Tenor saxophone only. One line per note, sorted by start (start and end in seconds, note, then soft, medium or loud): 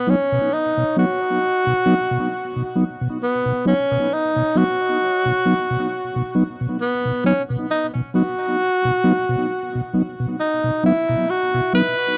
0.00 0.11 B3 medium
0.10 0.55 C#4 medium
0.54 0.98 D#4 medium
0.99 2.73 F#4 medium
3.23 3.64 B3 medium
3.67 4.15 C#4 medium
4.14 4.59 D#4 medium
4.57 6.36 F#4 medium
6.81 7.22 B3 medium
7.26 7.42 C#4 medium
7.71 7.87 D#4 medium
8.15 9.91 F#4 loud
10.40 10.81 D#4 medium
10.86 11.31 E4 medium
11.30 11.74 F#4 medium
11.75 12.18 B4 loud